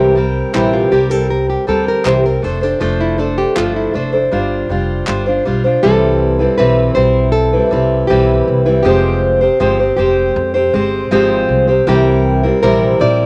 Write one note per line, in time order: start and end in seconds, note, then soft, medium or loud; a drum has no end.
0.00 0.40 C2 loud
0.00 0.16 C3 medium
0.00 0.16 E3 medium
0.00 0.14 G3 medium
0.00 0.15 C4 medium
0.00 0.16 G4 medium
0.00 0.54 G4 medium
0.00 0.17 A#4 medium
0.15 0.53 G3 medium
0.15 0.53 C4 medium
0.15 0.53 G4 medium
0.15 0.53 A#4 medium
0.53 0.85 A#1 medium
0.53 0.92 C3 medium
0.53 0.92 E3 medium
0.53 0.90 G3 medium
0.53 0.91 C4 medium
0.53 0.72 E4 medium
0.53 0.92 G4 medium
0.53 0.92 A#4 medium
0.53 clap medium
0.73 0.93 F4 medium
0.91 1.54 C2 medium
0.91 1.11 G3 medium
0.91 1.10 C4 medium
0.91 1.11 G4 medium
0.91 1.09 G4 medium
0.91 1.08 A#4 medium
1.09 1.66 G3 soft
1.09 1.66 C4 soft
1.09 1.67 G4 soft
1.09 1.30 A4 medium
1.09 1.67 A#4 medium
1.30 1.48 A#4 medium
1.50 1.68 G4 medium
1.67 1.99 D2 medium
1.67 2.04 G3 medium
1.67 2.05 C4 medium
1.67 2.05 G4 medium
1.67 1.88 A4 medium
1.67 2.05 A#4 medium
1.88 2.05 A#4 medium
2.04 2.36 C2 medium
2.04 2.24 C3 medium
2.04 2.24 E3 medium
2.04 2.24 G3 medium
2.04 2.24 C4 medium
2.04 2.23 G4 medium
2.04 2.22 A#4 medium
2.04 2.26 C5 medium
2.04 clap medium
2.23 2.41 G3 soft
2.23 2.42 C4 soft
2.23 2.43 G4 soft
2.23 2.43 A#4 soft
2.23 2.44 A#4 medium
2.42 2.74 F1 medium
2.42 2.61 A3 medium
2.42 2.62 D4 medium
2.42 2.61 A4 medium
2.42 2.63 A4 medium
2.42 2.60 C5 medium
2.61 2.80 D4 soft
2.61 2.81 G4 medium
2.61 2.80 A4 soft
2.61 2.80 C5 soft
2.80 3.43 F1 medium
2.80 3.18 F3 medium
2.80 3.17 A3 medium
2.80 3.17 D4 medium
2.80 3.00 F4 medium
2.80 3.18 A4 medium
2.80 3.19 C5 medium
3.01 3.19 E4 medium
3.18 3.55 A3 medium
3.18 3.55 D4 medium
3.18 3.39 D4 medium
3.18 3.56 A4 medium
3.18 3.56 C5 medium
3.38 3.57 G4 medium
3.56 3.88 G1 medium
3.56 3.94 F3 medium
3.56 3.92 A3 medium
3.56 3.93 D4 medium
3.56 3.76 F4 medium
3.56 3.94 A4 medium
3.56 3.95 C5 medium
3.56 clap medium
3.76 3.95 E4 medium
3.94 4.25 F1 medium
3.94 4.13 A3 medium
3.94 4.13 D4 medium
3.94 5.46 D4 medium
3.94 4.12 A4 medium
3.94 4.11 C5 medium
4.12 4.31 D4 soft
4.12 4.32 A4 soft
4.12 4.32 C5 medium
4.31 4.63 G1 medium
4.31 4.68 G3 medium
4.31 4.69 D4 medium
4.31 4.70 F4 medium
4.31 4.70 C5 medium
4.69 5.01 F1 medium
4.69 5.06 G3 medium
4.69 5.06 D4 medium
4.69 5.07 F4 medium
4.69 5.07 C5 medium
5.07 5.39 G1 medium
5.07 5.26 G3 medium
5.07 5.27 D4 medium
5.07 5.26 F4 medium
5.07 5.25 C5 medium
5.07 clap medium
5.26 5.45 D4 soft
5.26 5.46 F4 soft
5.26 5.45 C5 soft
5.45 5.77 B1 medium
5.45 5.64 G3 medium
5.45 5.65 D4 medium
5.45 5.64 F4 medium
5.45 5.62 C5 medium
5.64 5.83 D4 soft
5.64 5.84 F4 soft
5.64 5.83 C5 medium
5.83 6.45 C2 loud
5.83 6.40 C3 medium
5.83 6.40 E3 medium
5.83 6.40 G3 medium
5.83 6.40 C4 medium
5.83 6.39 E4 medium
5.83 6.55 A4 loud
5.83 6.38 B4 medium
6.39 6.58 G3 soft
6.39 6.58 C4 soft
6.39 6.59 E4 soft
6.39 6.58 B4 medium
6.58 6.90 B1 medium
6.58 6.96 E3 medium
6.58 6.94 G3 medium
6.58 6.96 C4 medium
6.58 6.96 E4 medium
6.58 6.95 B4 loud
6.58 6.97 B4 medium
6.95 7.58 B1 medium
6.95 7.53 G3 medium
6.95 7.53 C4 medium
6.95 7.52 E4 medium
6.95 7.31 C5 loud
7.32 8.07 A4 loud
7.53 7.70 G3 soft
7.53 7.71 C4 soft
7.53 7.72 E4 soft
7.53 7.72 B4 medium
7.71 8.03 C2 medium
7.71 8.09 G3 medium
7.71 8.09 C4 medium
7.71 8.09 E4 medium
7.71 8.10 B4 medium
8.07 8.41 B1 loud
8.07 8.66 E3 medium
8.07 8.66 G3 medium
8.07 8.66 C4 medium
8.07 8.65 E4 medium
8.07 8.81 G4 medium
8.07 8.64 B4 medium
8.48 8.79 C2 medium
8.65 8.84 G3 soft
8.65 8.84 C4 soft
8.65 8.85 E4 soft
8.65 8.85 B4 medium
8.83 9.47 F1 loud
8.83 9.41 F3 medium
8.83 9.41 G#3 medium
8.83 9.42 C4 medium
8.83 9.95 G4 medium
8.83 9.41 G4 medium
8.83 9.40 C5 medium
9.41 9.60 C4 soft
9.41 9.60 G4 soft
9.41 9.60 C5 medium
9.60 9.92 G1 medium
9.60 9.79 F3 medium
9.60 9.79 G#3 medium
9.60 9.80 C4 medium
9.60 9.79 G4 medium
9.60 9.78 C5 medium
9.79 9.97 C4 soft
9.79 9.98 G4 soft
9.79 9.98 C5 soft
9.97 10.29 F1 medium
9.97 10.54 G#3 medium
9.97 10.55 C4 medium
9.97 11.07 G4 medium
9.97 10.54 G4 medium
9.97 10.53 C5 medium
10.36 10.67 F2 loud
10.54 10.73 C4 soft
10.54 10.73 G4 soft
10.54 10.73 C5 medium
10.73 11.05 G1 medium
10.73 11.10 G#3 medium
10.73 11.11 C4 medium
10.73 11.11 G4 medium
10.73 11.12 C5 medium
11.11 11.42 G#1 medium
11.11 11.68 F3 medium
11.11 11.68 G#3 medium
11.11 11.68 C4 loud
11.11 11.68 G4 loud
11.11 11.66 C5 loud
11.49 11.80 C2 medium
11.68 11.87 C4 soft
11.68 11.87 G4 medium
11.68 11.87 C5 soft
11.87 12.49 C2 loud
11.87 12.44 C3 medium
11.87 12.44 E3 medium
11.87 12.44 G3 medium
11.87 12.44 C4 medium
11.87 12.43 E4 medium
11.87 12.62 G4 loud
11.87 12.42 A#4 loud
12.43 12.62 G3 soft
12.43 12.63 C4 soft
12.43 12.63 E4 medium
12.43 12.62 A#4 medium
12.63 12.94 A#1 medium
12.63 13.00 C3 medium
12.63 13.00 E3 medium
12.63 12.98 G3 medium
12.63 12.99 C4 medium
12.63 13.00 E4 medium
12.63 13.01 A#4 loud
12.63 13.01 A#4 medium
13.00 13.26 A#1 medium
13.00 13.26 G3 medium
13.00 13.26 C4 medium
13.00 13.26 E4 medium
13.00 13.26 A#4 medium
13.00 13.26 D5 loud